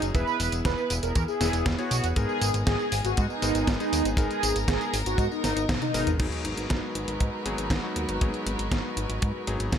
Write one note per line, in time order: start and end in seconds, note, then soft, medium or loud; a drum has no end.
0.00 0.12 F#1 medium
0.00 0.12 F#3 medium
0.00 0.13 F#3 medium
0.00 0.12 C#4 medium
0.00 0.13 C#4 medium
0.00 0.12 D#4 medium
0.00 0.13 D#4 medium
0.00 0.12 G#4 medium
0.00 2.12 G#4 medium
0.00 0.13 A#4 medium
0.00 closed hi-hat medium
0.00 tambourine soft
0.14 0.24 E1 loud
0.14 6.16 B3 medium
0.14 1.38 B3 medium
0.14 2.14 E4 medium
0.14 1.38 E4 medium
0.14 1.38 G#4 medium
0.14 0.53 B4 loud
0.14 1.38 E5 medium
0.14 kick loud
0.14 closed hi-hat medium
0.14 tambourine soft
0.27 tambourine soft
0.40 0.49 E1 medium
0.40 open hi-hat loud
0.40 tambourine medium
0.52 0.62 E1 medium
0.52 closed hi-hat medium
0.52 tambourine soft
0.65 0.75 E1 loud
0.65 0.94 B4 loud
0.65 kick loud
0.65 snare loud
0.65 closed hi-hat medium
0.65 tambourine soft
0.78 tambourine soft
0.90 1.00 E1 loud
0.90 open hi-hat loud
0.90 tambourine medium
1.03 1.12 E1 medium
1.03 1.22 A#4 loud
1.03 closed hi-hat soft
1.03 tambourine soft
1.15 1.25 E2 loud
1.15 kick loud
1.15 closed hi-hat medium
1.15 tambourine soft
1.28 1.66 G#4 loud
1.28 tambourine soft
1.41 1.50 E1 medium
1.41 1.75 B3 medium
1.41 1.75 E4 medium
1.41 1.75 G#4 medium
1.41 1.75 E5 medium
1.41 snare medium
1.41 open hi-hat loud
1.41 tambourine medium
1.53 1.63 E1 medium
1.53 closed hi-hat medium
1.53 tambourine soft
1.66 1.75 E1 loud
1.66 kick loud
1.66 snare loud
1.66 closed hi-hat medium
1.66 tambourine soft
1.78 2.13 B3 medium
1.78 2.13 E4 medium
1.78 2.07 F#4 loud
1.78 2.13 G#4 medium
1.78 2.13 C#5 medium
1.78 closed hi-hat soft
1.78 tambourine soft
1.91 2.01 B1 medium
1.91 open hi-hat medium
1.91 tambourine medium
2.04 2.13 E1 medium
2.04 closed hi-hat medium
2.04 tambourine soft
2.16 2.26 G#1 loud
2.16 3.40 G#3 medium
2.16 3.40 B3 medium
2.16 3.40 D#4 medium
2.16 4.16 G#4 medium
2.16 2.55 G#4 loud
2.16 3.40 A#4 medium
2.16 kick loud
2.16 closed hi-hat medium
2.16 tambourine soft
2.29 tambourine soft
2.42 2.51 G#1 medium
2.42 open hi-hat loud
2.42 tambourine medium
2.54 2.64 G#1 medium
2.54 closed hi-hat medium
2.54 tambourine soft
2.67 2.76 G#1 loud
2.67 2.95 G#4 loud
2.67 kick loud
2.67 snare loud
2.67 closed hi-hat medium
2.67 tambourine soft
2.79 tambourine soft
2.92 3.01 G#1 loud
2.92 open hi-hat loud
2.92 tambourine medium
3.04 3.14 G#1 medium
3.04 3.24 F#4 medium
3.04 closed hi-hat medium
3.04 tambourine soft
3.17 3.27 G#2 loud
3.17 kick loud
3.17 closed hi-hat medium
3.17 tambourine soft
3.30 3.68 D#4 loud
3.30 tambourine soft
3.42 3.52 G#1 medium
3.42 3.77 G#3 medium
3.42 3.77 B3 medium
3.42 3.77 D#4 medium
3.42 3.77 A#4 medium
3.42 open hi-hat loud
3.42 tambourine medium
3.55 3.65 G#1 medium
3.55 closed hi-hat medium
3.55 tambourine soft
3.67 3.77 G#1 loud
3.67 kick loud
3.67 snare loud
3.67 closed hi-hat medium
3.67 tambourine soft
3.80 4.15 G#3 medium
3.80 4.15 B3 medium
3.80 4.15 D#4 medium
3.80 4.09 D#4 loud
3.80 4.15 G#4 medium
3.80 closed hi-hat soft
3.80 tambourine soft
3.93 4.02 D#2 medium
3.93 open hi-hat loud
3.93 tambourine medium
4.05 4.15 G#1 medium
4.05 closed hi-hat medium
4.05 tambourine soft
4.17 4.27 G#1 loud
4.17 5.41 G#3 medium
4.17 5.41 B3 medium
4.17 5.41 D#4 medium
4.17 4.56 G#4 loud
4.17 6.18 A#4 medium
4.17 5.41 A#4 medium
4.17 kick loud
4.17 closed hi-hat medium
4.17 tambourine soft
4.31 closed hi-hat soft
4.31 tambourine soft
4.43 4.53 G#1 medium
4.43 open hi-hat loud
4.43 tambourine medium
4.56 4.65 G#1 medium
4.56 closed hi-hat medium
4.56 tambourine soft
4.68 4.78 G#1 loud
4.68 4.97 G#4 medium
4.68 kick loud
4.68 snare loud
4.68 closed hi-hat medium
4.68 tambourine soft
4.81 closed hi-hat soft
4.81 tambourine soft
4.94 5.03 G#1 loud
4.94 open hi-hat loud
4.94 tambourine medium
5.06 5.16 G#1 medium
5.06 5.25 F#4 loud
5.06 closed hi-hat medium
5.06 tambourine soft
5.18 5.28 G#2 loud
5.18 kick loud
5.18 closed hi-hat medium
5.18 tambourine soft
5.31 5.70 D#4 loud
5.31 tambourine soft
5.44 5.54 G#1 medium
5.44 snare medium
5.44 open hi-hat loud
5.44 tambourine medium
5.57 5.66 G#1 medium
5.57 closed hi-hat medium
5.57 tambourine soft
5.69 5.79 G#1 loud
5.69 kick loud
5.69 snare loud
5.69 closed hi-hat medium
5.69 high tom medium
5.69 tambourine soft
5.82 6.11 D#4 loud
5.82 closed hi-hat soft
5.82 high tom medium
5.82 tambourine soft
5.94 6.04 G#1 medium
5.94 6.17 G#3 medium
5.94 6.17 B3 medium
5.94 6.17 D#4 medium
5.94 6.17 A#4 medium
5.94 open hi-hat medium
5.94 tambourine medium
6.07 6.17 G#1 medium
6.07 closed hi-hat medium
6.07 mid tom medium
6.07 tambourine soft
6.19 6.29 G#1 loud
6.19 7.43 F#3 medium
6.19 9.78 G#3 medium
6.19 7.43 B3 medium
6.19 9.78 D#4 medium
6.19 7.43 D#4 medium
6.19 9.78 F#4 medium
6.19 7.43 G#4 medium
6.19 9.78 A#4 medium
6.19 9.78 B4 medium
6.19 kick loud
6.19 closed hi-hat medium
6.19 crash loud
6.32 closed hi-hat soft
6.45 6.54 G#1 medium
6.45 closed hi-hat medium
6.57 6.67 G#1 medium
6.57 closed hi-hat medium
6.70 6.80 G#1 loud
6.70 kick loud
6.70 snare loud
6.70 closed hi-hat medium
6.95 7.05 G#1 loud
6.95 closed hi-hat medium
7.08 7.17 G#1 medium
7.08 closed hi-hat medium
7.20 7.30 G#2 loud
7.20 kick loud
7.20 closed hi-hat medium
7.46 7.55 G#1 medium
7.46 7.80 F#3 medium
7.46 7.80 B3 medium
7.46 7.80 D#4 medium
7.46 7.80 G#4 medium
7.46 closed hi-hat medium
7.58 7.68 G#1 medium
7.58 closed hi-hat medium
7.70 7.80 G#1 loud
7.70 kick loud
7.70 snare loud
7.70 closed hi-hat medium
7.83 8.18 F#3 medium
7.83 8.18 B3 medium
7.83 8.18 D#4 medium
7.83 8.18 F#4 medium
7.96 8.06 D#2 medium
7.96 closed hi-hat medium
8.09 8.18 G#1 medium
8.09 closed hi-hat medium
8.21 8.31 G#1 medium
8.21 9.45 F#3 medium
8.21 9.45 B3 medium
8.21 9.45 D#4 medium
8.21 9.45 G#4 medium
8.21 kick loud
8.21 closed hi-hat medium
8.34 closed hi-hat soft
8.46 8.56 G#1 medium
8.46 closed hi-hat medium
8.59 8.69 G#1 medium
8.59 closed hi-hat medium
8.72 8.81 G#1 loud
8.72 kick loud
8.72 snare loud
8.72 closed hi-hat medium
8.97 9.06 G#1 loud
8.97 closed hi-hat medium
9.10 9.19 G#1 medium
9.10 closed hi-hat medium
9.22 9.32 G#2 loud
9.22 kick loud
9.22 closed hi-hat medium
9.47 9.57 G#1 medium
9.47 9.78 F#3 medium
9.47 9.78 B3 medium
9.47 9.78 D#4 medium
9.47 9.78 G#4 medium
9.47 closed hi-hat medium
9.60 9.69 G#1 medium
9.60 closed hi-hat medium
9.72 9.78 G#1 loud
9.72 kick loud
9.72 snare loud
9.72 closed hi-hat medium